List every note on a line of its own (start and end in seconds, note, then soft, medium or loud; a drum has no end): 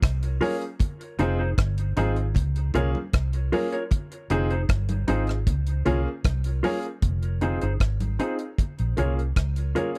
0.02 0.39 C2 medium
0.02 kick loud
0.02 cross-stick loud
0.02 closed hi-hat loud
0.23 closed hi-hat medium
0.41 0.62 A#3 medium
0.41 0.62 C#4 medium
0.41 0.55 F4 medium
0.41 0.62 F4 medium
0.41 0.62 G#4 loud
0.41 0.55 A#4 loud
0.41 0.56 C#5 loud
0.41 open hi-hat medium
0.41 high conga medium
0.61 closed hi-hat soft
0.80 kick loud
0.80 closed hi-hat medium
0.80 low conga medium
1.01 closed hi-hat soft
1.19 1.55 F1 loud
1.19 1.40 C4 loud
1.19 1.40 D#4 medium
1.19 1.33 D#4 medium
1.19 1.40 F4 loud
1.19 1.40 G#4 loud
1.19 1.33 G#4 medium
1.19 1.34 C5 medium
1.19 closed hi-hat medium
1.19 low conga medium
1.39 1.50 D#4 medium
1.39 1.50 G#4 medium
1.39 1.49 C5 medium
1.58 1.94 G1 medium
1.58 kick loud
1.58 cross-stick loud
1.58 closed hi-hat medium
1.78 closed hi-hat medium
1.96 2.33 G#1 loud
1.96 2.17 C4 medium
1.96 2.17 D#4 medium
1.96 2.11 D#4 medium
1.96 2.16 F4 medium
1.96 2.16 G#4 loud
1.96 2.11 G#4 medium
1.96 2.12 C5 medium
1.96 closed hi-hat medium
1.96 high conga medium
2.16 2.25 F4 soft
2.16 2.25 G#4 soft
2.16 closed hi-hat soft
2.35 2.72 C#2 loud
2.35 kick loud
2.35 closed hi-hat loud
2.35 low conga medium
2.56 closed hi-hat medium
2.74 2.94 C2 medium
2.74 2.95 A#3 medium
2.74 2.95 C#4 medium
2.74 2.89 F4 medium
2.74 2.96 F4 medium
2.74 2.96 G#4 loud
2.74 2.89 A#4 medium
2.74 2.89 C#5 loud
2.74 closed hi-hat medium
2.74 low conga medium
2.95 high conga medium
3.13 3.50 C2 medium
3.13 kick loud
3.13 cross-stick loud
3.13 closed hi-hat loud
3.33 closed hi-hat medium
3.52 3.73 A#3 medium
3.52 3.73 C#4 medium
3.52 3.66 F4 medium
3.52 3.74 F4 medium
3.52 3.74 G#4 loud
3.52 3.67 A#4 medium
3.52 3.67 C#5 medium
3.52 open hi-hat medium
3.52 high conga medium
3.72 3.83 F4 medium
3.72 3.83 A#4 medium
3.72 3.83 C#5 medium
3.72 closed hi-hat soft
3.91 kick loud
3.91 closed hi-hat loud
3.91 low conga medium
4.12 closed hi-hat soft
4.30 4.67 F1 loud
4.30 4.51 C4 medium
4.30 4.51 D#4 medium
4.30 4.45 D#4 medium
4.30 4.51 F4 medium
4.30 4.51 G#4 loud
4.30 4.45 G#4 medium
4.30 4.45 C5 medium
4.30 closed hi-hat medium
4.30 low conga medium
4.50 4.61 D#4 medium
4.50 4.61 G#4 medium
4.50 4.61 C5 medium
4.50 closed hi-hat soft
4.69 5.06 G1 loud
4.69 kick loud
4.69 cross-stick loud
4.69 closed hi-hat medium
4.69 high conga soft
4.89 closed hi-hat medium
4.89 high conga medium
5.07 5.45 G#1 medium
5.07 5.28 C4 medium
5.07 5.29 D#4 medium
5.07 5.22 D#4 medium
5.07 5.27 F4 medium
5.07 5.27 G#4 loud
5.07 5.22 G#4 medium
5.07 5.23 C5 medium
5.07 closed hi-hat medium
5.07 high conga medium
5.27 5.36 F4 soft
5.27 5.36 G#4 soft
5.27 cross-stick medium
5.27 closed hi-hat soft
5.47 5.83 C#2 loud
5.47 kick loud
5.47 closed hi-hat loud
5.47 low conga medium
5.67 closed hi-hat soft
5.85 6.05 C2 medium
5.85 6.06 A#3 loud
5.85 6.07 C#4 medium
5.85 6.00 F4 medium
5.85 6.07 F4 medium
5.85 6.07 G#4 loud
5.85 6.00 A#4 medium
5.85 6.00 C#5 medium
5.85 closed hi-hat medium
5.85 low conga medium
6.24 6.61 C2 medium
6.24 kick loud
6.24 cross-stick loud
6.24 closed hi-hat medium
6.24 high conga soft
6.44 closed hi-hat medium
6.63 6.85 A#3 medium
6.63 6.85 C#4 medium
6.63 6.77 F4 medium
6.63 6.85 F4 medium
6.63 6.85 G#4 loud
6.63 6.78 A#4 loud
6.63 6.78 C#5 loud
6.63 open hi-hat medium
6.63 high conga medium
6.83 closed hi-hat soft
7.02 7.58 F1 loud
7.02 kick loud
7.02 closed hi-hat medium
7.02 low conga medium
7.23 closed hi-hat soft
7.41 7.62 C4 medium
7.41 7.62 D#4 medium
7.41 7.56 D#4 medium
7.41 7.63 F4 medium
7.41 7.63 G#4 medium
7.41 7.56 G#4 medium
7.41 7.56 C5 medium
7.41 closed hi-hat medium
7.41 low conga medium
7.62 7.80 G1 medium
7.62 7.72 D#4 soft
7.62 7.72 G#4 medium
7.62 7.72 C5 medium
7.62 closed hi-hat soft
7.80 8.17 G#1 medium
7.80 kick medium
7.80 cross-stick medium
7.80 closed hi-hat medium
8.00 closed hi-hat medium
8.00 high conga medium
8.19 8.40 C4 medium
8.19 8.40 D#4 medium
8.19 8.33 D#4 medium
8.19 8.38 F4 medium
8.19 8.38 G#4 medium
8.19 8.34 G#4 medium
8.19 8.34 C5 medium
8.19 closed hi-hat medium
8.39 8.47 F4 soft
8.39 8.47 G#4 soft
8.39 closed hi-hat soft
8.58 kick loud
8.58 closed hi-hat medium
8.58 low conga medium
8.79 8.97 A#1 medium
8.79 closed hi-hat soft
8.97 9.34 C2 medium
8.97 9.18 A#3 medium
8.97 9.18 C#4 medium
8.97 9.18 F4 medium
8.97 9.12 F4 medium
8.97 9.18 G#4 medium
8.97 9.12 A#4 medium
8.97 9.12 C#5 medium
8.97 closed hi-hat medium
8.97 low conga medium
9.19 closed hi-hat soft
9.36 9.73 C#2 medium
9.36 kick loud
9.36 cross-stick medium
9.36 closed hi-hat medium
9.56 closed hi-hat medium
9.75 9.96 A#3 medium
9.75 9.96 C#4 medium
9.75 9.89 F4 medium
9.75 9.96 F4 medium
9.75 9.97 G#4 medium
9.75 9.90 A#4 medium
9.75 9.90 C#5 medium
9.75 closed hi-hat medium
9.75 high conga medium
9.75 low conga medium